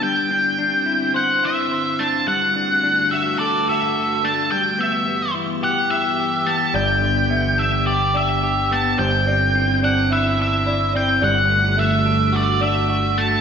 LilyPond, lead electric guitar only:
\new Staff \with { instrumentName = "Lead electric guitar" } { \time 4/4 \key c \lydian \tempo 4 = 107 g''2 fis''8 e''4 a''8 | fis''4. e''8 d''8 e''4 a''8 | g''8 e''4 r8 fis''8 e''4 a''8 | g''4. e''8 d''8 e''4 a''8 |
g''4. fis''8 e''8 e''4 g''8 | fis''4 e''4 d''8 e''4 a''8 | }